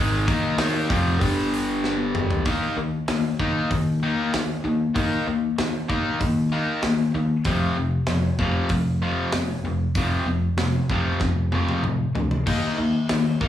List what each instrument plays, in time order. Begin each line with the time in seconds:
Already playing: fingered electric bass G#1, overdriven electric guitar G#2 D#3 G#3
0.27 fingered electric bass D#2, overdriven electric guitar D#3 A#3 D#4, kick, open hi-hat
0.58 fingered electric bass D#2, overdriven electric guitar D#3 A#3 D#4, snare, open hi-hat
0.89 fingered electric bass F1, overdriven electric guitar F2 C3 F3, kick, open hi-hat
1.20 fingered electric bass G1, overdriven electric guitar G2 D3 G3, kick, open hi-hat
1.54 open hi-hat
1.84 snare
2.15 mid tom
2.30 floor tom
2.45 fingered electric bass D#2, overdriven electric guitar D#3 A#3 D#4, kick, open hi-hat
2.76 fingered electric bass D#2, overdriven electric guitar D#3 A#3
3.08 fingered electric bass D#2, overdriven electric guitar D#3 A#3, snare, open hi-hat
3.40 fingered electric bass D#2, overdriven electric guitar D#3 A#3 D#4, kick
3.71 fingered electric bass D#2, overdriven electric guitar D#3 A#3, kick, open hi-hat
4.03 overdriven electric guitar D#3 A#3 D#4
4.34 fingered electric bass D#2, overdriven electric guitar D#3 A#3, snare, open hi-hat
4.64 fingered electric bass D#2, overdriven electric guitar D#3 A#3
4.95 fingered electric bass D#2, overdriven electric guitar D#3 A#3 D#4, kick, open hi-hat
5.27 fingered electric bass D#2, overdriven electric guitar D#3 A#3
5.58 fingered electric bass D#2, overdriven electric guitar D#3 A#3, snare, open hi-hat
5.89 fingered electric bass D#2, overdriven electric guitar D#3 A#3 D#4, kick
6.20 fingered electric bass D#2, overdriven electric guitar D#3 A#3, kick, open hi-hat
6.52 overdriven electric guitar D#3 A#3 D#4
6.82 fingered electric bass D#2, overdriven electric guitar D#3 A#3, snare, open hi-hat
7.14 fingered electric bass D#2, overdriven electric guitar D#3 A#3
7.45 fingered electric bass F1, overdriven electric guitar F2 C3 F3, kick, open hi-hat
7.77 fingered electric bass F1, overdriven electric guitar F2 C3
8.07 fingered electric bass F1, overdriven electric guitar F2 C3, snare, open hi-hat
8.39 fingered electric bass F1, overdriven electric guitar F2 C3 F3, kick
8.69 fingered electric bass F1, overdriven electric guitar F2 C3, kick, open hi-hat
9.02 overdriven electric guitar F2 C3 F3
9.32 fingered electric bass F1, overdriven electric guitar F2 C3, snare, open hi-hat
9.64 fingered electric bass F1, overdriven electric guitar F2 C3
9.95 fingered electric bass F1, overdriven electric guitar F2 C3 F3, kick, open hi-hat
10.26 fingered electric bass F1, overdriven electric guitar F2 C3
10.57 fingered electric bass F1, overdriven electric guitar F2 C3, snare, open hi-hat
10.89 fingered electric bass F1, overdriven electric guitar F2 C3 F3, kick
11.20 fingered electric bass F1, overdriven electric guitar F2 C3, kick, snare
11.52 overdriven electric guitar F2 C3 F3, high tom
11.69 high tom
11.83 fingered electric bass F1, overdriven electric guitar F2 C3, mid tom
12.15 fingered electric bass D2, overdriven electric guitar F2 C3, floor tom
12.31 floor tom
12.46 fingered electric bass D#2, overdriven electric guitar D#3 A#3 D#4, kick, open hi-hat, crash
12.78 fingered electric bass D#2, overdriven electric guitar D#3 A#3
13.09 fingered electric bass D#2, overdriven electric guitar D#3 A#3, snare, open hi-hat
13.41 fingered electric bass D#2, overdriven electric guitar D#3 A#3 D#4, kick